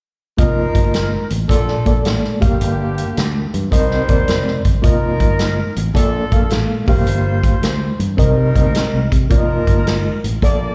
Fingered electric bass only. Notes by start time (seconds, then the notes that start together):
0.39 F1
0.75 G1
1.31 A1
1.49 A#1
1.86 A#1
2.05 A1
2.42 G1
2.51 F1
2.61 G1
3.18 D2
3.54 G2
3.72 C2
4.09 D#2
4.28 F1
4.65 G1
4.84 F1
5.20 G1
5.77 A1
5.95 A#1
6.32 A#1
6.51 A1
6.88 G1
6.97 F1
7.07 G1
7.62 D2
7.99 G2
8.18 C2
8.37 C3
8.56 C2
8.65 D2
8.93 C2
9.12 C3
9.30 F1
9.67 G1
10.24 A1
10.42 A#1